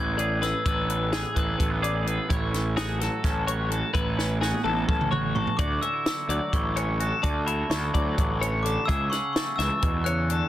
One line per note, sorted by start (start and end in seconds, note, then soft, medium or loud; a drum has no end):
0.00 0.52 A1 medium
0.00 0.41 A2 medium
0.00 1.34 E3 medium
0.00 0.63 B3 medium
0.00 0.67 D4 medium
0.00 0.19 G#4 medium
0.00 0.18 B4 medium
0.00 0.43 G#6 medium
0.18 0.63 G#4 medium
0.18 0.41 D5 medium
0.18 closed hi-hat medium
0.42 0.63 A2 medium
0.42 0.65 B4 medium
0.42 0.54 E6 medium
0.42 snare soft
0.42 closed hi-hat medium
0.66 1.23 A1 medium
0.66 2.04 A2 medium
0.66 2.28 D4 medium
0.66 1.12 B4 medium
0.66 2.02 E6 medium
0.66 kick medium
0.66 closed hi-hat medium
0.89 1.58 B3 medium
0.89 closed hi-hat medium
1.13 1.36 G#4 medium
1.13 1.81 G#4 medium
1.13 snare loud
1.13 closed hi-hat medium
1.34 1.55 A1 medium
1.34 2.98 E3 medium
1.34 1.83 B4 medium
1.34 kick medium
1.34 closed hi-hat medium
1.58 2.18 A1 medium
1.58 1.70 A3 medium
1.58 kick medium
1.58 closed hi-hat medium
1.70 2.29 B3 soft
1.82 2.26 G#4 medium
1.82 2.06 D5 medium
1.82 closed hi-hat medium
2.05 2.26 A2 medium
2.05 2.30 B4 medium
2.05 closed hi-hat medium
2.29 3.07 A1 medium
2.29 3.68 A2 medium
2.29 3.94 E4 medium
2.29 2.77 C#5 medium
2.29 kick medium
2.29 closed hi-hat medium
2.51 3.24 C#4 medium
2.51 snare soft
2.51 closed hi-hat medium
2.76 3.46 F#4 medium
2.76 3.00 G#4 medium
2.76 snare loud
2.76 closed hi-hat medium
2.98 3.97 F#3 medium
2.98 3.47 A4 medium
2.98 snare soft
2.98 closed hi-hat medium
3.24 3.82 A1 medium
3.24 4.17 C#4 medium
3.24 kick loud
3.24 snare soft
3.24 closed hi-hat medium
3.47 4.41 F#4 medium
3.47 3.71 C#5 medium
3.47 closed hi-hat medium
3.69 3.91 A2 soft
3.69 3.93 A4 medium
3.69 closed hi-hat medium
3.93 4.52 A1 medium
3.93 5.33 A2 medium
3.93 5.56 E4 medium
3.93 4.41 B4 medium
3.93 kick loud
3.93 closed hi-hat medium
4.17 4.87 C#4 medium
4.17 snare soft
4.41 5.11 F#4 medium
4.41 4.64 G#4 medium
4.41 snare medium
4.54 high tom soft
4.64 4.84 A1 medium
4.64 6.29 E3 medium
4.64 5.11 A4 medium
4.64 high tom medium
4.88 5.46 A1 medium
4.88 5.56 C#4 medium
4.88 kick medium
4.88 mid tom medium
5.01 mid tom medium
5.11 5.58 F#4 medium
5.11 5.35 C#5 medium
5.11 mid tom medium
5.35 5.56 A2 soft
5.35 5.59 A4 medium
5.35 5.59 C#6 medium
5.35 floor tom medium
5.47 floor tom medium
5.57 5.78 D2 medium
5.57 7.21 D3 medium
5.57 6.99 F#4 medium
5.57 5.82 D5 medium
5.57 5.82 D6 medium
5.57 kick loud
5.57 closed hi-hat medium
5.81 5.94 C#4 medium
5.81 6.29 E5 medium
5.81 6.05 E6 medium
5.81 closed hi-hat soft
5.94 6.53 E4 soft
6.06 6.50 E6 medium
6.06 snare loud
6.06 closed hi-hat medium
6.29 6.39 D2 medium
6.29 7.21 F#3 soft
6.29 6.76 D5 medium
6.29 closed hi-hat medium
6.53 7.11 A1 medium
6.53 7.26 E4 soft
6.53 7.26 C#6 medium
6.53 kick medium
6.53 closed hi-hat medium
6.76 7.26 C#4 soft
6.76 7.00 C#5 medium
6.76 closed hi-hat medium
7.00 7.22 F#4 soft
7.00 7.24 A4 medium
7.00 closed hi-hat soft
7.23 7.62 D2 medium
7.23 8.65 D3 medium
7.23 8.87 F#4 medium
7.23 7.46 D5 medium
7.23 7.48 A5 medium
7.23 kick medium
7.23 closed hi-hat medium
7.46 9.12 E4 medium
7.46 7.94 E5 medium
7.46 7.57 B5 medium
7.46 closed hi-hat medium
7.70 7.89 D2 medium
7.70 8.67 C#6 medium
7.70 snare loud
7.70 closed hi-hat medium
7.94 8.14 D2 medium
7.94 8.16 F#3 medium
7.94 8.41 D5 medium
7.94 kick medium
7.94 closed hi-hat medium
8.17 8.76 A1 medium
8.17 8.40 F#3 medium
8.17 kick medium
8.17 closed hi-hat medium
8.40 8.64 E3 medium
8.40 8.65 C#5 medium
8.40 closed hi-hat medium
8.63 8.87 D3 soft
8.63 8.88 A4 medium
8.63 8.88 D6 medium
8.63 closed hi-hat medium
8.85 9.08 C#2 medium
8.85 9.59 C#3 medium
8.85 10.48 G#4 medium
8.85 9.11 E5 medium
8.85 9.11 E6 medium
8.85 kick medium
8.85 closed hi-hat medium
9.10 10.48 C#4 medium
9.10 9.58 F#5 medium
9.10 9.32 C#6 medium
9.10 snare soft
9.10 closed hi-hat soft
9.33 10.48 A3 medium
9.33 9.59 C#6 medium
9.33 snare medium
9.33 closed hi-hat medium
9.56 9.69 C#2 medium
9.56 10.48 E3 medium
9.56 10.06 E5 medium
9.56 10.06 E6 medium
9.56 snare soft
9.56 closed hi-hat soft
9.82 10.41 E2 medium
9.82 10.06 B2 medium
9.82 kick medium
9.82 closed hi-hat medium
10.04 10.30 C#3 medium
10.04 10.30 C#5 medium
10.04 10.48 F#6 medium
10.04 closed hi-hat medium
10.30 10.48 D3 soft
10.30 10.48 A4 medium
10.30 closed hi-hat medium